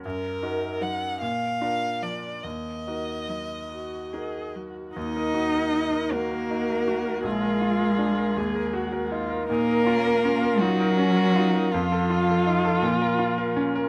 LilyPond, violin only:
\new Staff \with { instrumentName = "Violin" } { \time 6/8 \key ees \minor \tempo 4. = 53 bes'4 ges''8 f''4 d''8 | ees''2~ ees''8 r8 | ees''4. bes'4. | aes'2~ aes'8 r8 |
bes'4. ges'4. | f'2~ f'8 r8 | }